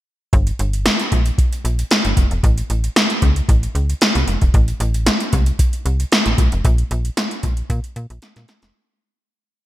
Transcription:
0.33 0.52 G1 loud
0.33 kick loud
0.33 closed hi-hat medium
0.47 closed hi-hat soft
0.59 0.89 G1 medium
0.59 closed hi-hat medium
0.73 closed hi-hat medium
0.86 snare loud
0.86 closed hi-hat loud
1.00 closed hi-hat medium
1.12 1.31 A#1 medium
1.12 kick medium
1.12 closed hi-hat medium
1.26 closed hi-hat medium
1.38 kick loud
1.38 closed hi-hat medium
1.53 closed hi-hat medium
1.65 1.84 A#1 medium
1.65 closed hi-hat medium
1.79 closed hi-hat medium
1.91 snare loud
1.91 closed hi-hat medium
2.05 2.14 G1 medium
2.05 closed hi-hat medium
2.17 2.27 F1 medium
2.17 kick loud
2.17 closed hi-hat medium
2.31 2.40 E1 medium
2.31 closed hi-hat soft
2.43 2.63 A1 loud
2.43 kick medium
2.43 closed hi-hat medium
2.58 closed hi-hat soft
2.70 2.89 A1 medium
2.70 closed hi-hat medium
2.84 closed hi-hat medium
2.96 snare loud
2.96 closed hi-hat medium
3.10 closed hi-hat medium
3.22 3.42 C#2 medium
3.22 kick medium
3.22 closed hi-hat medium
3.36 closed hi-hat medium
3.49 3.68 A1 loud
3.49 kick loud
3.49 closed hi-hat medium
3.63 closed hi-hat soft
3.75 3.94 C#2 medium
3.75 closed hi-hat medium
3.90 closed hi-hat medium
4.01 snare loud
4.01 closed hi-hat medium
4.15 4.24 C2 loud
4.15 closed hi-hat medium
4.27 4.38 F1 medium
4.27 closed hi-hat medium
4.41 4.51 E1 medium
4.41 kick medium
4.41 closed hi-hat soft
4.54 4.73 A1 loud
4.54 kick loud
4.54 closed hi-hat medium
4.68 closed hi-hat soft
4.80 5.10 A1 loud
4.80 closed hi-hat medium
4.94 closed hi-hat medium
5.06 snare loud
5.06 closed hi-hat medium
5.20 closed hi-hat soft
5.33 5.52 C2 medium
5.33 kick medium
5.33 closed hi-hat medium
5.46 closed hi-hat medium
5.59 kick loud
5.59 closed hi-hat medium
5.73 closed hi-hat soft
5.86 6.05 C2 medium
5.86 closed hi-hat medium
6.00 closed hi-hat medium
6.12 snare loud
6.12 closed hi-hat medium
6.26 6.35 A1 medium
6.26 closed hi-hat medium
6.38 6.48 A#1 medium
6.38 kick medium
6.38 closed hi-hat medium
6.52 6.61 F1 medium
6.52 closed hi-hat soft
6.65 6.84 A#1 loud
6.65 kick medium
6.65 closed hi-hat medium
6.78 closed hi-hat soft
6.91 7.10 A#1 loud
6.91 closed hi-hat medium
7.05 closed hi-hat medium
7.17 snare loud
7.17 closed hi-hat medium
7.31 closed hi-hat medium
7.43 7.63 A#1 medium
7.43 kick medium
7.43 closed hi-hat medium
7.57 closed hi-hat medium
7.70 7.80 A#2 loud
7.70 kick loud
7.70 closed hi-hat medium
7.84 closed hi-hat medium
7.96 8.06 A#2 medium
7.96 closed hi-hat medium
8.10 8.19 A#1 medium
8.10 closed hi-hat medium
8.22 snare medium
8.22 closed hi-hat medium
8.36 8.45 A#2 medium
8.36 snare medium
8.36 closed hi-hat soft
8.48 snare medium
8.48 closed hi-hat medium
8.62 8.72 F1 medium
8.62 snare medium
8.62 closed hi-hat soft

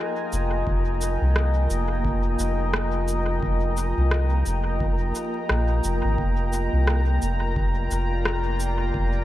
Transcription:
0.00 9.24 A#3 medium
0.00 6.17 F4 medium
0.00 9.24 A#4 medium
0.00 6.19 D#5 medium
0.00 9.24 G5 medium
0.00 6.19 G#5 medium
0.00 9.24 A#5 medium
0.33 0.63 F1 medium
0.33 cabasa medium
0.67 1.18 F1 loud
0.67 kick loud
1.01 cabasa medium
1.21 1.68 C2 medium
1.36 cross-stick medium
1.70 2.36 F1 loud
1.70 cabasa medium
2.05 kick loud
2.39 3.40 F1 loud
2.39 cabasa medium
2.73 cross-stick medium
3.08 cabasa medium
3.43 3.93 F1 loud
3.43 kick loud
3.77 cabasa soft
3.97 4.43 C2 medium
4.11 cross-stick medium
4.46 5.12 F1 loud
4.46 cabasa medium
4.80 kick loud
5.15 cabasa medium
5.49 5.81 A#1 medium
5.49 cross-stick medium
5.84 6.02 F1 medium
5.84 cabasa soft
6.04 6.17 G#1 medium
6.18 6.69 F1 loud
6.18 9.24 F4 medium
6.18 kick loud
6.53 cabasa soft
6.73 7.19 C2 medium
6.81 9.24 D5 medium
6.87 cross-stick medium
7.22 7.88 F1 loud
7.22 cabasa soft
7.56 kick loud
7.91 8.92 F1 loud
7.91 cabasa soft
8.25 cross-stick medium
8.60 cabasa soft
8.94 9.24 F1 loud
8.94 kick loud

